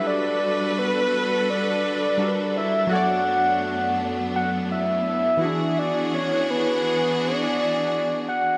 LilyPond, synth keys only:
\new Staff \with { instrumentName = "Synth keys" } { \time 4/4 \key e \dorian \tempo 4 = 84 <g d' fis' a' b'>2. <g d' fis' a' ais' b'>4 | <fis fis' a' cis'' d''>2.~ <fis fis' a' cis'' d''>8 <e d' e' fis' gis'>8~ | <e d' e' fis' gis'>2.~ <e d' e' fis' gis'>8 r8 | }